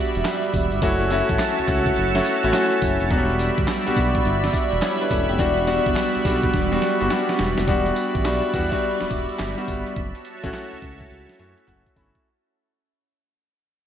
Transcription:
Already playing: G3 B3 D4 F#4 D5 E5 B5
0.15 E1, closed hi-hat
0.25 snare, clap, closed hi-hat, tambourine
0.44 closed hi-hat
0.54 E1, kick, closed hi-hat, tambourine
0.72 G1, closed hi-hat
0.82 F#1 A3 C#4 E4 F#4 C#5 A5, kick, closed hi-hat, tambourine
1.01 closed hi-hat
1.11 A3 C#4 E4 F#4, closed hi-hat, tambourine
1.29 A1, kick, closed hi-hat
1.39 snare, clap, closed hi-hat, tambourine
1.58 C#2, closed hi-hat
1.67 C#2 A3 C#4 E4 F#4, kick, closed hi-hat, tambourine
1.86 kick, closed hi-hat
1.96 F#1, closed hi-hat
2.15 A3 C#4 E4 F#4, snare, closed hi-hat
2.25 closed hi-hat, tambourine
2.43 A1 A3 C#4 E4 F#4, closed hi-hat
2.53 A3 C#4 E4 F#4, snare, clap, closed hi-hat, tambourine
2.72 closed hi-hat
2.82 F#1, kick, closed hi-hat, tambourine
3.00 F1, closed hi-hat
3.10 E1 F#3 G3 B3 D4 F#4 D5 E5 B5, kick, closed hi-hat, tambourine
3.17 G3
3.29 closed hi-hat
3.39 closed hi-hat, tambourine
3.58 G1, kick, closed hi-hat
3.68 snare, clap, closed hi-hat, tambourine
3.86 B1 G3 B3 D4 F#4, closed hi-hat
3.96 B1, kick, closed hi-hat, tambourine
4.15 kick, closed hi-hat
4.25 G1, closed hi-hat
4.44 snare, closed hi-hat
4.53 F#4 D5, kick, closed hi-hat, tambourine
4.72 E1, closed hi-hat
4.82 E4 C#5, snare, clap, closed hi-hat, tambourine
5.01 D4 B4, closed hi-hat
5.10 E1 C#4 A4, kick, closed hi-hat, tambourine
5.29 F1 B3 G4, closed hi-hat
5.39 E1 G3 B3 D4 F#4, kick, closed hi-hat, tambourine
5.58 closed hi-hat
5.67 G3 B3 D4 F#4, closed hi-hat, tambourine
5.86 G1, kick, closed hi-hat
5.96 snare, clap, closed hi-hat, tambourine
6.15 B1, closed hi-hat
6.25 B1 G3 B3 D4 F#4, kick, open hi-hat, tambourine
6.43 kick, closed hi-hat
6.53 E1, kick, snare, closed hi-hat
6.72 G3 B3 D4 F#4, closed hi-hat
6.82 snare, closed hi-hat
7.00 G1 G3 B3 D4 F#4, closed hi-hat
7.10 G3 B3 D4 F#4, snare, clap, closed hi-hat
7.29 snare, closed hi-hat
7.39 E1, snare, closed hi-hat
7.58 F1, snare, closed hi-hat
7.67 E1 G3 B3 D4 F#4 D5 E5 B5, kick, closed hi-hat, tambourine
7.86 closed hi-hat
7.96 closed hi-hat, tambourine
8.15 A1, kick, closed hi-hat
8.25 B1 G3 B3 D4 F#4, snare, clap, closed hi-hat, tambourine
8.43 closed hi-hat
8.53 E2 G3 B3 D4 F#4, kick, closed hi-hat, tambourine
8.72 G3 B3 D4 F#4, kick, closed hi-hat
8.82 closed hi-hat
9.01 E1, snare, closed hi-hat
9.10 E1, kick, closed hi-hat, tambourine
9.29 closed hi-hat
9.39 G1, snare, clap, closed hi-hat, tambourine
9.57 G3 B3 D4 F#4, closed hi-hat
9.68 G1, kick, closed hi-hat, tambourine
9.86 closed hi-hat
9.96 F#1 F#4 C#5 E5 A5, kick, closed hi-hat
10.15 closed hi-hat
10.25 closed hi-hat
10.43 A1 A3 C#4 E4 F#4, kick, closed hi-hat
10.54 snare, clap, closed hi-hat
10.72 C#2, closed hi-hat
10.82 C#2, kick, closed hi-hat
11.01 kick, closed hi-hat
11.11 C#2, closed hi-hat
11.29 snare, closed hi-hat
11.39 F#2 A3 C#4 E4 F#4 E5, closed hi-hat
11.58 closed hi-hat
11.68 F#1 F#5, kick, clap, closed hi-hat
11.87 kick, closed hi-hat
11.96 G1 A3 C#4 E4 F#4 B5, kick, closed hi-hat
12.15 kick, closed hi-hat

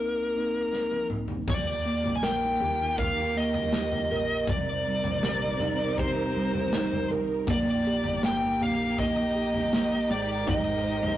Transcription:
Already playing: C2 A#3 C4 D#4 A#4
0.36 A#3 C4 D#4
0.73 snare
0.91 high tom
1.10 C2, mid tom
1.28 floor tom
1.47 D#2 D#3 A#3 F4 G4 D5, kick, floor tom, crash
1.86 A#3
2.04 A#1, floor tom
2.16 G#5
2.23 A#4 G5, snare
2.60 D#2 G4, floor tom
2.98 A#4 F5, kick, floor tom
3.36 A#3 D#5
3.54 floor tom
3.73 G4, snare
3.92 floor tom
4.11 A#1 A#4, floor tom
4.47 C2 C3 C4 D#4 A#4 D5, kick, floor tom
4.87 G3
5.04 A#1, floor tom
5.23 G4, snare
5.60 C2 D#4, floor tom
5.97 G4 C5, kick, floor tom
6.36 C2 G3
6.54 floor tom
6.73 D#4, snare
6.92 floor tom
7.11 A#4, floor tom
7.47 A#1 A#3 D#4 G4 D5, kick, floor tom
7.87 G4
8.04 G1, floor tom
8.23 A#3 G5, snare
8.61 A#1 G4 F5, floor tom
8.98 A#3 D#5, kick, floor tom
9.35 G4
9.54 floor tom
9.73 A#3, snare
10.10 G#1 G#3 A#4 C5 D5
10.47 G#1 D#4 D#5, kick, floor tom
10.84 C5
11.03 A#1, floor tom

